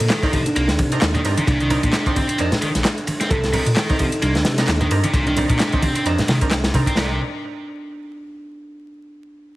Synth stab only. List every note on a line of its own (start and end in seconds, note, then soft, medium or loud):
0.23 0.31 C4 loud
0.23 0.31 D4 medium
0.23 0.31 D#4 medium
0.23 0.31 A#4 loud
0.92 1.22 C4 medium
0.92 1.22 D4 medium
0.92 1.22 D#4 medium
0.92 1.22 A#4 loud
1.25 1.40 C4 medium
1.25 1.40 D4 medium
1.25 1.40 D#4 medium
1.25 1.40 A#4 loud
1.70 1.86 C4 loud
1.70 1.86 D4 medium
1.70 1.86 D#4 loud
1.70 1.86 A#4 loud
2.06 2.19 C4 medium
2.06 2.19 D4 medium
2.06 2.19 D#4 medium
2.06 2.19 C5 loud
2.39 2.49 C4 medium
2.39 2.49 D4 medium
2.39 2.49 D#4 medium
2.39 2.49 A#4 loud
3.54 3.69 C4 medium
3.54 3.69 D4 medium
3.54 3.69 D#4 medium
3.54 3.69 A#4 medium
3.89 3.97 C4 loud
3.89 3.97 D4 medium
3.89 3.97 D#4 medium
3.89 3.97 A#4 loud
4.58 4.89 C4 medium
4.58 4.89 D4 medium
4.58 4.89 D#4 medium
4.58 4.89 A#4 loud
4.91 5.06 C4 medium
4.91 5.06 D4 medium
4.91 5.06 D#4 medium
4.91 5.06 A#4 loud
5.37 5.52 C4 loud
5.37 5.52 D4 medium
5.37 5.52 D#4 medium
5.37 5.52 A#4 loud
5.73 5.86 C4 medium
5.73 5.86 D4 medium
5.73 5.86 D#4 medium
5.73 5.86 C5 loud
6.06 6.16 C4 medium
6.06 6.16 D4 medium
6.06 6.16 D#4 medium
6.06 6.16 A#4 loud
6.42 6.55 C4 medium
6.42 6.55 D4 medium
6.42 6.55 D#4 medium
6.42 6.55 A#4 medium
6.74 6.96 C4 loud
6.74 6.96 D4 medium
6.74 6.96 D#4 medium
6.74 6.96 A#4 loud
6.97 7.15 C4 medium
6.97 7.15 D4 medium
6.97 7.15 D#4 medium
6.97 7.15 A#4 loud